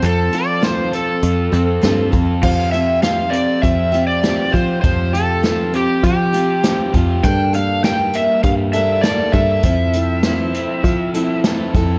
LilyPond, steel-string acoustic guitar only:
\new Staff \with { instrumentName = "Steel-string acoustic guitar" } { \time 4/4 \key f \major \tempo 4 = 100 <f c' f' a'>8 <c' f' a'>8 <f c' f' a'>4. <c' f' a'>8 <f c' f' a'>8 <c' f' a'>8 | <f c' f' g'>8 <c' f' g'>8 <f c' f' g'>4. <c' f' g'>8 <f c' f' g'>8 <c' f' g'>8 | <f c' f' g'>8 <c' f' g'>8 <f c' f' g'>4. <c' f' g'>8 <f c' f' g'>8 <c' f' g'>8 | <g, d g bes d' a'>8 <g bes d' a'>8 <g bes d' a'>4. <g bes d' a'>8 <g bes d' a'>8 <g bes d' a'>8 |
<f c' e' a'>8 <c' e' a'>8 <f c' e' a'>4. <c' e' a'>8 <f c' e' a'>8 <c' e' a'>8 | }